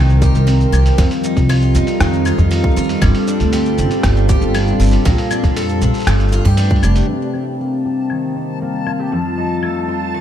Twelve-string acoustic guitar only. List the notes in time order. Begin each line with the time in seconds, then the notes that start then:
Already playing: C3 D#3 C4 G4
0.22 G4
0.47 C4
0.72 G4
0.98 F2
1.24 D#4
1.49 F4
1.75 D#4
2.00 D#3
2.25 F4
2.51 D#4
2.76 F4
3.02 G2
3.28 D4
3.53 G4
3.78 D4
4.04 G3
4.29 G4
4.55 D4
4.80 G4
5.05 A#2
5.31 D4
5.57 A4
5.82 D4
6.07 G2
6.33 F4
6.45 G4
6.58 D4
6.84 G4
7.09 C3 G4
7.34 C4
7.60 A#3
7.85 G4
8.11 D#3
8.36 C4
8.62 A#3
8.87 F4
8.99 G4
9.12 F2 F4
9.38 D#4
9.63 A3
9.88 F4
10.14 D#3